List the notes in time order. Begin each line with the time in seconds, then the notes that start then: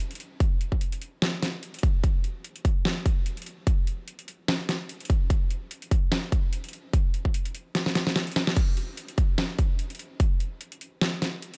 0.11 closed hi-hat
0.15 closed hi-hat
0.20 closed hi-hat
0.40 kick, closed hi-hat
0.61 closed hi-hat
0.72 kick
0.81 closed hi-hat
0.92 closed hi-hat
1.02 closed hi-hat
1.22 snare, closed hi-hat
1.43 snare, closed hi-hat
1.63 closed hi-hat
1.74 closed hi-hat
1.79 closed hi-hat
1.83 kick, closed hi-hat
2.04 kick, closed hi-hat
2.24 closed hi-hat
2.44 closed hi-hat
2.56 closed hi-hat
2.65 kick, closed hi-hat
2.85 snare, closed hi-hat
3.06 kick, closed hi-hat
3.26 closed hi-hat
3.37 closed hi-hat
3.42 closed hi-hat
3.46 closed hi-hat
3.67 kick, closed hi-hat
3.87 closed hi-hat
4.08 closed hi-hat
4.19 closed hi-hat
4.28 closed hi-hat
4.48 snare, closed hi-hat
4.69 snare, closed hi-hat
4.89 closed hi-hat
5.00 closed hi-hat
5.05 closed hi-hat
5.10 kick, closed hi-hat
5.30 kick, closed hi-hat
5.51 closed hi-hat
5.71 closed hi-hat
5.82 closed hi-hat
5.91 kick, closed hi-hat
6.12 snare, closed hi-hat
6.32 kick, closed hi-hat
6.53 closed hi-hat
6.64 closed hi-hat
6.69 closed hi-hat
6.73 closed hi-hat
6.93 kick, closed hi-hat
7.14 closed hi-hat
7.25 kick
7.34 closed hi-hat
7.45 closed hi-hat
7.55 closed hi-hat
7.75 snare, closed hi-hat
7.86 snare
7.95 snare, closed hi-hat
8.07 snare
8.16 snare, closed hi-hat
8.27 closed hi-hat
8.32 closed hi-hat
8.36 snare, closed hi-hat
8.47 snare
8.57 kick, closed hi-hat, crash
8.77 closed hi-hat
8.97 closed hi-hat
9.08 closed hi-hat
9.18 kick, closed hi-hat
9.38 snare, closed hi-hat
9.59 kick, closed hi-hat
9.79 closed hi-hat
9.90 closed hi-hat
9.95 closed hi-hat
9.99 closed hi-hat
10.20 kick, closed hi-hat
10.40 closed hi-hat
10.61 closed hi-hat
10.72 closed hi-hat
10.81 closed hi-hat
11.01 snare, closed hi-hat
11.22 snare, closed hi-hat
11.42 closed hi-hat
11.54 closed hi-hat